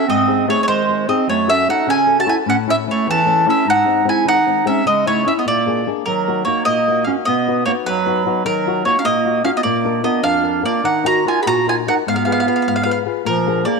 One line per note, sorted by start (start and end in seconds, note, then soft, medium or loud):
0.07 0.47 G#2 medium
0.07 0.44 C4 medium
0.07 0.50 D#5 medium
0.28 0.47 C4 medium
0.28 0.47 D#4 medium
0.28 0.48 G#4 medium
0.47 0.59 A3 medium
0.47 0.80 C4 soft
0.47 0.80 D#4 soft
0.47 0.81 G#4 medium
0.47 0.61 C#5 medium
0.61 0.67 A3 soft
0.61 0.67 C#5 medium
0.68 1.07 D#3 medium
0.68 1.05 G#3 medium
0.68 1.08 C5 medium
0.89 1.07 C4 soft
0.89 1.07 D#4 soft
0.89 1.07 G#4 soft
1.08 1.24 C4 soft
1.08 1.26 C4 medium
1.08 1.24 D#4 soft
1.08 1.24 G#4 soft
1.08 1.27 D#5 medium
1.27 1.66 F#2 medium
1.27 1.48 A3 medium
1.27 1.49 C#5 medium
1.47 1.67 C#4 soft
1.47 1.67 C#4 medium
1.47 1.67 F#4 soft
1.47 1.67 A4 soft
1.47 1.67 E5 medium
1.68 2.00 C#4 medium
1.68 1.87 D#4 medium
1.68 2.00 F#4 soft
1.68 2.00 A4 soft
1.68 1.89 F#5 medium
1.87 2.26 C#3 medium
1.87 2.15 C#4 medium
1.87 2.17 G#5 medium
2.07 2.25 C#4 soft
2.07 2.26 F#4 soft
2.07 2.25 A4 soft
2.18 2.27 F#4 medium
2.18 2.28 A5 medium
2.26 2.42 C#4 medium
2.26 2.37 E4 medium
2.26 2.43 F#4 soft
2.26 2.42 A4 medium
2.26 2.34 G#5 medium
2.46 2.85 A2 medium
2.46 2.57 C#4 medium
2.46 2.55 F#5 medium
2.66 2.86 A3 soft
2.66 2.86 C#4 soft
2.66 2.77 C#4 medium
2.66 2.87 E4 medium
2.66 2.75 E5 medium
2.87 3.19 A3 soft
2.87 3.06 A3 medium
2.87 3.19 C#4 soft
2.87 3.19 E4 medium
2.87 3.07 C#5 medium
3.07 3.45 E2 medium
3.07 3.45 E3 medium
3.07 3.46 A4 medium
3.26 3.45 A3 soft
3.26 3.45 C#4 soft
3.26 3.46 E4 soft
3.46 3.62 A3 medium
3.46 3.62 C#4 medium
3.46 3.65 C#4 medium
3.46 3.62 E4 medium
3.50 3.66 E5 medium
3.65 4.04 G#2 medium
3.65 4.03 D#4 medium
3.70 4.05 F#5 loud
3.85 4.04 G#3 soft
3.85 4.04 C4 soft
3.85 4.05 D#4 medium
4.05 4.37 G#3 soft
4.05 4.37 C4 soft
4.05 4.38 D#4 medium
4.05 4.25 E4 medium
4.09 4.26 G#5 medium
4.25 4.64 D#3 medium
4.25 4.63 D#4 medium
4.25 4.64 F#5 loud
4.46 4.64 G#3 soft
4.46 4.64 C4 soft
4.46 4.65 D#4 soft
4.65 4.81 G#3 medium
4.65 4.81 C4 soft
4.65 4.84 C#4 medium
4.65 4.81 D#4 medium
4.65 4.84 E5 medium
4.85 5.24 C#3 medium
4.85 5.05 G#3 medium
4.85 5.06 D#5 medium
5.06 5.25 A3 medium
5.06 5.24 C#4 soft
5.06 5.25 D#4 soft
5.06 5.25 E4 medium
5.06 5.26 C#5 medium
5.25 5.41 C#4 soft
5.25 5.32 C#4 medium
5.25 5.41 D#4 soft
5.25 5.42 E4 soft
5.25 5.33 E5 medium
5.38 5.44 B3 soft
5.38 5.45 D#5 medium
5.45 5.84 A#2 medium
5.45 5.89 A#3 medium
5.45 5.89 D5 medium
5.66 5.86 A#3 soft
5.66 5.86 D4 soft
5.66 5.86 G#4 soft
5.87 6.02 A#3 medium
5.87 6.02 D4 soft
5.87 6.02 G#4 medium
6.05 6.45 D#3 medium
6.05 6.43 F#3 medium
6.05 6.44 A#4 medium
6.28 6.46 A#3 medium
6.28 6.45 D#4 soft
6.28 6.47 F#4 medium
6.45 6.64 A#3 medium
6.45 6.78 A#3 soft
6.45 6.78 D#4 soft
6.45 6.79 F#4 soft
6.45 6.63 C#5 medium
6.65 7.05 A#2 soft
6.65 7.03 A#3 medium
6.65 7.03 D#5 medium
6.88 7.06 A#3 soft
6.88 7.06 D#4 soft
6.88 7.07 F#4 soft
7.04 7.22 A#3 medium
7.04 7.15 C#4 medium
7.04 7.23 D#4 medium
7.04 7.23 F#4 medium
7.04 7.10 F5 medium
7.25 7.65 B2 medium
7.25 7.63 B3 medium
7.25 7.65 D#5 medium
7.47 7.65 B3 soft
7.47 7.66 D#4 soft
7.47 7.66 F#4 medium
7.66 7.74 A#3 medium
7.66 7.98 B3 soft
7.66 7.98 D#4 soft
7.66 7.99 F#4 medium
7.66 7.71 C#5 medium
7.86 8.25 F#2 soft
7.86 8.41 F#3 medium
7.86 8.45 B4 medium
8.05 8.24 B3 soft
8.05 8.25 D#4 soft
8.05 8.25 F#4 soft
8.26 8.41 B3 soft
8.26 8.42 D#4 soft
8.26 8.41 F#4 medium
8.45 8.84 D#3 medium
8.45 8.82 F#3 medium
8.45 8.82 A#4 medium
8.66 8.84 D#4 soft
8.66 8.85 F4 soft
8.66 8.86 F#4 medium
8.85 8.97 A#3 medium
8.85 9.17 D#4 medium
8.85 9.17 F4 soft
8.85 9.18 F#4 soft
8.85 8.97 C#5 medium
8.98 9.04 C#4 medium
8.98 9.05 F5 medium
9.04 9.44 A#2 medium
9.04 9.41 A#3 medium
9.04 9.42 D#5 loud
9.25 9.43 D#4 soft
9.25 9.44 F4 soft
9.25 9.44 F#4 soft
9.44 9.50 C#4 medium
9.44 9.60 D#4 medium
9.44 9.60 F4 medium
9.44 9.61 F#4 medium
9.44 9.50 F5 medium
9.57 9.62 B3 medium
9.57 9.63 D#5 medium
9.63 10.03 A#2 medium
9.63 10.01 A#3 medium
9.63 10.04 D5 medium
9.84 10.03 D4 soft
9.84 10.03 F4 soft
9.84 10.03 A#4 soft
10.03 10.22 B3 medium
10.03 10.36 D4 soft
10.03 10.36 F4 soft
10.03 10.37 A#4 soft
10.03 10.25 D#5 medium
10.23 10.63 F2 medium
10.23 10.61 D4 medium
10.23 10.62 F5 medium
10.43 10.61 D4 soft
10.43 10.61 F4 soft
10.43 10.62 A#4 soft
10.62 10.83 A#3 medium
10.62 10.79 D4 soft
10.62 10.79 F4 soft
10.62 10.80 A#4 soft
10.62 10.86 D5 medium
10.84 11.24 D#3 medium
10.84 11.04 D#4 medium
10.84 11.06 F#5 medium
11.04 11.24 D#4 soft
11.04 11.25 F#4 soft
11.04 11.25 F#4 medium
11.04 11.25 A#4 soft
11.04 11.25 A#5 loud
11.25 11.58 D#4 soft
11.25 11.40 F4 medium
11.25 11.59 F#4 soft
11.25 11.59 A#4 soft
11.25 11.41 G#5 medium
11.41 11.46 G#4 medium
11.41 11.47 B5 medium
11.46 11.85 A#2 medium
11.46 11.66 F#4 medium
11.46 11.66 A#5 loud
11.66 11.85 D#4 soft
11.66 11.77 F4 medium
11.66 11.87 F#4 soft
11.66 11.87 A#4 soft
11.66 11.74 G#5 medium
11.87 12.02 D#4 soft
11.87 11.97 D#4 medium
11.87 12.03 F#4 soft
11.87 12.03 A#4 medium
11.87 11.93 F#5 medium
12.07 12.45 G#2 medium
12.07 13.02 B3 medium
12.07 12.14 F5 medium
12.16 12.22 F5 medium
12.25 12.45 F4 medium
12.25 12.45 G#4 soft
12.25 12.46 B4 medium
12.25 12.30 F5 medium
12.32 12.38 F5 medium
12.40 12.45 F5 medium
12.46 12.78 F4 soft
12.46 12.78 G#4 soft
12.46 12.79 B4 medium
12.46 12.53 F5 medium
12.56 12.60 F5 medium
12.62 12.67 F5 soft
12.67 13.05 G#2 soft
12.67 12.74 F5 medium
12.76 12.82 F5 medium
12.83 13.04 F4 soft
12.83 13.04 G#4 soft
12.83 13.05 B4 soft
12.83 12.89 F5 medium
12.91 12.97 F5 medium
13.06 13.21 F4 medium
13.06 13.21 G#4 medium
13.06 13.22 B4 medium
13.25 13.64 A#2 medium
13.25 13.63 F3 medium
13.25 13.65 A#4 medium
13.47 13.65 A#3 medium
13.47 13.66 D4 soft
13.47 13.65 G#4 soft
13.65 13.80 A#3 medium
13.65 13.80 D4 soft
13.65 13.80 G#4 medium
13.65 13.80 D5 medium